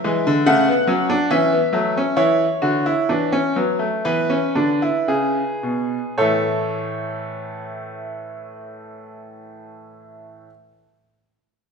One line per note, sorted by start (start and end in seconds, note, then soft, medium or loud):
0.00 0.41 E5 medium
0.04 0.24 E3 medium
0.04 0.30 G#3 medium
0.27 0.46 D3 medium
0.46 0.72 C#3 loud
0.46 0.66 A3 medium
0.46 1.27 F#5 medium
0.68 0.87 B3 medium
0.87 1.14 F#3 medium
0.87 1.08 C#4 medium
1.10 1.29 D4 medium
1.30 1.57 E3 medium
1.30 1.51 C#4 medium
1.30 2.15 E5 medium
1.53 1.73 B3 medium
1.73 2.00 F#3 medium
1.73 1.94 A3 medium
1.97 2.18 C#4 medium
2.17 2.45 E3 medium
2.17 2.45 E4 medium
2.17 4.00 C#5 medium
2.62 2.91 D3 medium
2.62 2.84 F#4 medium
2.86 3.08 E4 medium
3.09 3.38 E3 medium
3.09 3.32 D4 medium
3.32 3.55 C#4 medium
3.56 3.86 F#3 medium
3.56 3.79 B3 medium
3.79 4.03 A3 medium
4.05 4.36 E3 medium
4.05 4.29 B3 medium
4.05 6.12 B4 medium
4.30 4.54 C#4 medium
4.55 4.88 D3 medium
4.55 4.80 D4 medium
4.82 5.07 E4 medium
5.08 5.41 C#3 medium
5.08 6.14 G#4 medium
5.63 5.97 B2 medium
6.18 10.46 A2 medium
6.18 10.49 E3 medium
6.18 10.46 A4 medium
6.18 10.45 C#5 medium
6.22 10.50 A3 medium